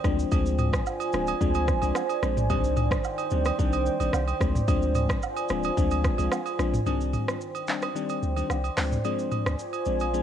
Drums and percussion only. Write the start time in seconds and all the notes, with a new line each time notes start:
0.04 kick, cross-stick, shaker
0.19 shaker
0.32 kick, high agogo, shaker
0.46 shaker
0.58 mid tom, high agogo, shaker
0.73 kick, cross-stick, shaker
0.86 low woodblock, shaker
1.00 high agogo, shaker
1.12 cross-stick, shaker
1.27 high agogo, shaker
1.41 kick, shaker
1.54 high agogo, shaker
1.68 kick, cross-stick, shaker
1.82 high agogo, shaker
1.95 cross-stick, low woodblock, shaker
2.09 high agogo, shaker
2.23 cross-stick, shaker
2.37 mid tom, shaker
2.50 kick, high agogo, shaker
2.64 shaker
2.77 mid tom, high agogo, shaker
2.91 kick, cross-stick, shaker
3.04 low woodblock, shaker
3.18 high agogo, shaker
3.31 shaker
3.45 cross-stick, high agogo, shaker
3.59 kick, shaker
3.73 high agogo, shaker
3.86 shaker
4.00 high agogo, shaker
4.13 cross-stick, low woodblock, shaker
4.28 high agogo, shaker
4.41 kick, cross-stick, shaker
4.55 mid tom, shaker
4.68 kick, high agogo, shaker
4.82 shaker
4.95 mid tom, high agogo, shaker
5.09 kick, cross-stick, shaker
5.23 low woodblock, shaker
5.37 high agogo, shaker
5.49 cross-stick, shaker
5.63 high agogo, shaker
5.77 kick, shaker
5.91 high agogo, shaker
6.04 kick, cross-stick, shaker
6.18 high agogo, shaker
6.32 cross-stick, low woodblock, shaker
6.46 high agogo, shaker
6.59 cross-stick, shaker
6.74 mid tom, shaker
6.86 high agogo, shaker
7.01 shaker
7.13 mid tom, high agogo, shaker
7.28 cross-stick, shaker
7.41 shaker
7.55 high agogo, shaker
7.67 clap, shaker
7.82 cross-stick, high agogo, shaker
7.96 shaker
8.09 high agogo, shaker
8.23 shaker
8.36 high agogo, shaker
8.50 cross-stick, low woodblock, shaker
8.64 high agogo, shaker
8.77 cross-stick, clap, open hi-hat, shaker
8.92 mid tom, shaker
9.05 high agogo, shaker
9.19 shaker
9.31 mid tom, high agogo, shaker
9.46 cross-stick, shaker
9.59 shaker
9.73 high agogo, shaker
9.85 shaker
10.00 high agogo, shaker
10.14 shaker